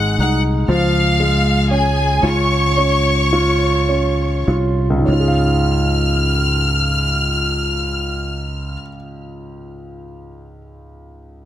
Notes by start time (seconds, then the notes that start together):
Already playing: G#1 G#3 D#4 F#5 F#6
0.18 C2 D#4 F#5 F#6
0.68 C#2 F3 F5 F6
1.20 G#3
1.71 C#4 G#4 G#5
2.23 C#2 F4 C#5 C#6
2.77 C#4
3.33 F4
3.89 C#4
4.47 C2 F4
4.90 C#2
4.98 G#2
5.05 C#2 C#4
5.10 F4 F6
5.20 G#4
5.28 F5